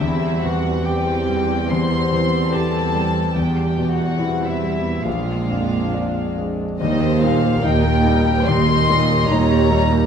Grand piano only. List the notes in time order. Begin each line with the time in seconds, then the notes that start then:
0.01 E2
0.44 E3
0.85 G4
1.29 G3
1.72 E2
2.13 E3
2.53 G4
2.95 G3
3.36 E2
3.78 B2
4.19 E4
4.63 G3
5.06 A#1
5.50 F2
5.94 D4
6.38 G#3
6.81 D#2
7.23 A#2
7.63 D#4
8.07 G3
8.48 D#2
8.90 A#2
9.31 D#4
9.71 G3